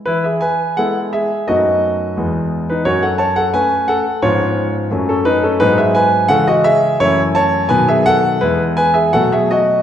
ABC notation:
X:1
M:2/4
L:1/16
Q:1/4=86
K:E
V:1 name="Grand piano"
[EB] [Ge] [Bg]2 [Af]2 [Ge]2 | [Fd]6- [Fd] [DB] | [Fc] [Af] [ca] [Af] [Bg]2 [Af]2 | [^Ec]4- [Ec] [CA] [DB] [CA] |
[DB] [Ge] [Bg]2 [Af] [Fd] [Ge]2 | [Ec]2 [ca]2 [Bg] [Ge] [Af]2 | [EB]2 [Bg] [Ge] [Af] [Ge] [Fd]2 |]
V:2 name="Grand piano" clef=bass
E,4 [G,B,E]4 | [F,,A,B,D]4 [E,,G,B,E]4 | F,,4 [A,C]4 | [G,,^E,B,C]4 [F,,F,A,C]4 |
[G,,F,G,B,]4 [C,E,G,C]4 | [F,,E,A,C]4 [B,,D,F,B,]4 | [E,,E,G,B,]4 [B,,F,A,B,]4 |]